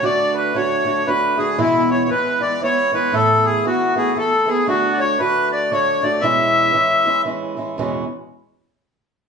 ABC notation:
X:1
M:3/4
L:1/16
Q:"Swing" 1/4=116
K:Emix
V:1 name="Accordion"
d2 B2 c4 B2 G2 | E2 c3/2 c/2 B2 d2 c2 B2 | A2 G2 F2 G2 A2 G2 | F2 c2 B2 d2 c2 d2 |
e8 z4 | z12 |]
V:2 name="Accordion"
d2 B2 c4 B2 G2 | E2 c2 B2 d2 c4 | A2 G2 F4 A2 G2 | F3/2 d/2 c2 B2 d2 c2 d2 |
e8 z4 | z12 |]
V:3 name="Steel-string acoustic guitar"
[D,A,DF]4 [D,A,DF]2 [D,A,DF]2 [D,A,DF]2 [D,A,DF]2 | [E,,B,,E,G,B,E]4 [E,G,B,E]2 [E,G,B,E]2 [E,G,B,E]2 [E,G,B,E]2 | [A,,E,A,B,E]4 [E,A,B,E]2 [E,A,B,E]2 [E,A,B,E]2 [E,A,B,E]2 | [D,A,DF]4 [D,A,DF]4 [D,A,DF]2 [D,A,DF]2 |
[E,,B,,E,G,CE]4 [E,G,CE]2 [E,G,CE]2 [E,G,CE]2 [E,G,CE]2 | [E,,B,,E,G,CE]2 z8 z2 |]